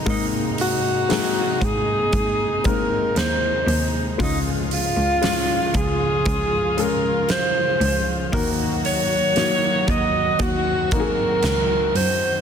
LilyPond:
<<
  \new Staff \with { instrumentName = "Alto saxophone" } { \time 4/4 \key des \major \tempo 4 = 58 ees'8 ges'4 aes'4 bes'8 c''8. r16 | ees'8 f'4 aes'4 bes'8 c''8. r16 | bes'8 des''4 ees''8 ges'8 bes'4 c''8 | }
  \new Staff \with { instrumentName = "Grand piano" } { \time 4/4 \key des \major <aes bes c' ees' bes'>4 <aes bes c' ees' aes'>4. <aes bes c' ees' bes'>4. | <aes des' f'>4 <aes des' f'>4. <aes des' aes'>4. | <bes ees' ges'>4 <bes ees' ges'>4. <bes ees' ges' aes'>4. | }
  \new Staff \with { instrumentName = "Grand piano" } { \clef bass \time 4/4 \key des \major aes,4. r2 r8 | des4. r2 r8 | ees4. r2 r8 | }
  \new Staff \with { instrumentName = "String section" } { \time 4/4 \key des \major << { <c ees'>1 | <des f f'>1 | <ees ges ges'>1 | } \\ { <aes bes>1~ | <aes bes>1 | bes2 c'2 | } >> }
  \new Staff \with { instrumentName = "Cello" } { \clef bass \time 4/4 \key des \major aes,4. aes,8 aes,4 ees,8 ees,8 | des,8. des,8. des,8 des,4. des,8 | ees,4. ees,8 ees,4 des,8 ges,8 | }
  \new DrumStaff \with { instrumentName = "Drums" } \drummode { \time 4/4 <hho hhp bd>8 <hho hhp>8 <hho hhp sn>8 <hho hhp bd>8 <hho hhp bd>8 <hho hhp bd>8 <hho hhp sn>8 <hho hhp>8 | <hho hhp bd>8 <hho hhp>8 <hho hhp sn>8 <hho hhp bd>8 <hho hhp bd>8 <hho hhp>8 <hho hhp sn>8 <hho hhp>8 | <hho hhp bd>8 <hho hhp>8 <hho hhp sn>8 <hho hhp bd>8 <hho hhp bd>8 <hho hhp bd>8 <hho hhp sn>8 <hho hhp>8 | }
>>